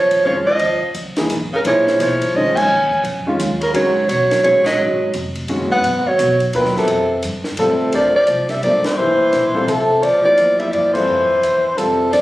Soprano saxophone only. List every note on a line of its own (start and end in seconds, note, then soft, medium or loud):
0.00 0.24 C#5 medium
0.27 0.36 C#5 medium
0.46 0.91 D#5 medium
1.56 1.61 A#4 medium
1.67 1.98 C#5 medium
2.02 2.38 C#5 medium
2.36 2.58 D#5 medium
2.56 3.04 G#5 medium
3.63 3.74 A#4 medium
3.76 4.08 C#5 medium
4.09 4.41 C#5 medium
4.44 4.64 C#5 medium
4.66 5.11 D#5 medium
5.72 6.09 F#5 loud
6.08 6.42 C#5 loud
6.55 6.75 B4 medium
6.78 7.22 A4 medium
7.59 7.91 A4 medium
7.95 8.14 D5 medium
8.16 8.52 D5 medium
8.50 8.63 E5 medium
8.64 8.84 D5 medium
8.86 9.70 C5 loud
9.69 10.05 A4 medium
10.03 10.24 D5 medium
10.25 10.61 D5 medium
10.59 10.73 E5 medium
10.72 10.93 D5 medium
10.94 11.79 C5 medium
11.77 12.12 A4 medium
12.13 12.22 D5 medium